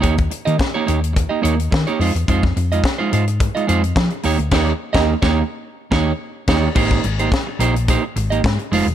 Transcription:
<<
  \new Staff \with { instrumentName = "Clean electric guitar" } { \time 4/4 \key aes \major \tempo 4 = 107 <bes ees' g' des''>16 r8 <bes ees' g' ees''>16 r16 <bes ees' g' des''>16 <bes ees' g' des''>16 r8 <bes ees' g' ees''>16 <bes ees' g' des''>16 r8 <bes ees' g' des''>16 <aes ees' f' c''>16 r16 | <aes ees' f' c''>16 r8 <aes ees' f' ees''>16 r16 <aes ees' f' c''>16 <aes ees' f' c''>16 r8 <aes ees' f' ees''>16 <aes ees' f' c''>16 r8. <bes ees' g' des''>16 r16 | <bes ees' g' des''>8 r16 <bes ees' g' ees''>8 <bes ees' g' des''>8 r8. <bes ees' g' des''>8 r8 <bes ees' g' des''>8 | <bes ees' g' c''>8 r16 <bes ees' g' c''>16 r8 <bes ees' g' c''>16 r16 <bes ees' g' c''>16 r8 <bes ees' g' ees''>16 r8 <aes ees' f' c''>16 r16 | }
  \new Staff \with { instrumentName = "Fingered electric bass" } { \clef bass \time 4/4 \key aes \major ees,8 r16 ees16 r8 ees,8. r16 ees,8 ees16 r16 f,16 fes,16 | f,8 f,8 r8 aes,8. r16 f,8 f16 r16 ees,16 d,16 | ees,8 r16 ees,8 ees,8 r8. ees,8 r8 ees,8 | aes,,8 aes,,8 r8 bes,,8. r16 aes,,8 aes,16 r16 f,,16 fes,,16 | }
  \new DrumStaff \with { instrumentName = "Drums" } \drummode { \time 4/4 <hh bd>16 <hh bd>16 hh16 hh16 <bd sn>8 hh16 hh16 <hh bd>8 hh16 hh16 <bd sn>16 hh16 hho16 hh16 | <hh bd>16 <bd sn>16 hh16 hh16 <bd sn>8 hh16 hh16 <hh bd>16 hh16 hh16 hh16 <bd sn>16 hh16 hho16 hh16 | <cymc bd sn>8. <bd sn>16 r16 <bd sn>8. r8 <bd sn>8 r8 <cymc bd sn>8 | <cymc bd>16 <bd sn>16 hh16 hh16 <bd sn>8 hh16 hh16 <hh bd>8 hh16 hh16 <bd sn>16 hh16 hho16 hh16 | }
>>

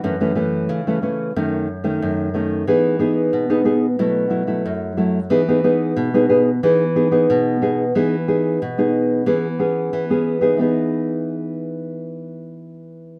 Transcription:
\new Staff \with { instrumentName = "Nylon-string guitar" } { \time 4/4 \key e \major \tempo 4 = 91 << { <e a cis'>16 <e a cis'>16 <e a cis'>8. <e a cis'>16 <e a cis'>8 <dis a cis'>8 r16 <dis a cis'>8. <dis a cis'>8 | <b dis' gis'>8 <b dis' gis'>8. <b dis' gis'>16 <b dis' gis'>16 r16 <fis a e'>8 <fis a e'>16 <fis a e'>8. <fis a e'>16 r16 | <b dis' gis'>16 <b dis' gis'>16 <b dis' gis'>8. <b dis' gis'>16 <b dis' gis'>16 r16 <b dis' gis'>16 r16 <b dis' gis'>16 <b dis' gis'>8. <b dis' gis'>16 r16 | <b dis' gis'>16 r16 <b dis' gis'>8 r16 <b dis' gis'>8. <b cis' gis'>16 r16 <b cis' gis'>8. <b cis' gis'>8 <b dis' gis'>16~ |
<b dis' gis'>8 r2. r8 | } \\ { fis,4 cis4 fis,4 fis,4 | e4 b,4 b,4 fis,4 | e4 b,4 e4 b,4 | e4 b,4 e4 e4 |
<e b dis' gis'>1 | } >> }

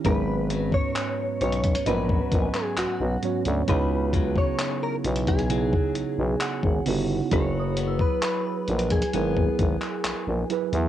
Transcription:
<<
  \new Staff \with { instrumentName = "Synth bell" } { \time 4/4 \key gis \minor \tempo 4 = 66 r2 dis''16 fis''16 gis''4~ gis''16 r16 | r2. fis''4 | b''16 dis'''16 e'''4~ e'''16 r2 r16 | }
  \new Staff \with { instrumentName = "Clean electric guitar" } { \time 4/4 \key gis \minor b'8. cis''8. cis''8 b'8. gis'16 fis'8. r16 | b'8. cis''8 ais'8 gis'4.~ gis'16 r8 | cis''8. b'16 b'8. gis'4.~ gis'16 r8 | }
  \new Staff \with { instrumentName = "Synth keys" } { \time 4/4 \key gis \minor <gis, fis b cis' b'>4~ <gis, fis b cis' b'>16 r8. <gis, fis b cis' b'>4 r8 <gis, fis b cis' cis''>8 | <cis b dis' e' fis'>4~ <cis b dis' e' fis'>16 r8. <cis b dis' e' gis'>4 r8 <cis b dis' e' fis'>8 | <fis e' gis' b'>4~ <fis e' gis' b'>16 r8. <fis e' gis' ais'>4 r8 <fis e' gis' b'>8 | }
  \new Staff \with { instrumentName = "Steel-string acoustic guitar" } { \clef bass \time 4/4 \key gis \minor gis,8 fis4. fis2 | cis8 fis4. fis2 | fis8 b4. b2 | }
  \new Staff \with { instrumentName = "FM bass" } { \clef bass \time 4/4 \key gis \minor gis,,4 r8 b,,8 ais,,8 ais,,16 r16 b,,16 b,,16 r16 d,16 | cis,4 r8 b,,4 b,,16 b,,16 r16 gis,,16 g,,8 | fis,,4 r8 ais,,8 gis,,8 gis,,16 r16 ais,,16 ais,,16 r16 e,16 | }
  \new DrumStaff \with { instrumentName = "Drums" } \drummode { \time 4/4 <hh bd>8 hh16 bd16 <hc hh>8 hh32 hh32 <hh bd>32 hh32 hh16 bd16 <hh bd>16 hc16 <hc hh>8 hh16 hh16 | <hh bd>8 <hh bd>16 bd16 <hc hh>8 hh32 hh32 <hh bd>32 hh32 hh16 bd16 hh8 <hc hh>16 bd16 hho8 | <hh bd>8 hh16 bd16 <hc hh>8 hh32 hh32 <hh bd>32 hh32 hh16 bd16 <hh bd>16 hc16 <hc hh>8 hh16 hh16 | }
>>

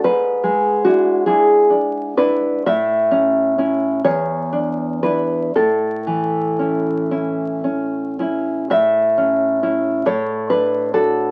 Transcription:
\new Staff \with { instrumentName = "Nylon-string guitar" } { \time 6/8 \key a \major \tempo 4. = 43 << { b'4 fis'8 gis'4 b'8 | e''4. cis''4 b'8 | a'4. r4. | e''4. cis''8 b'8 a'8 | } \\ { gis,8 gis8 <d' e'>8 <d' e'>8 d'8 <d' e'>8 | a,8 cis'8 <cis' e'>8 e,8 d'8 <d' e'>8 | a,8 e8 <cis' e'>8 <cis' e'>8 cis'8 <cis' e'>8 | a,8 cis'8 <cis' e'>8 a,8 d'8 <d' fis'>8 | } >> }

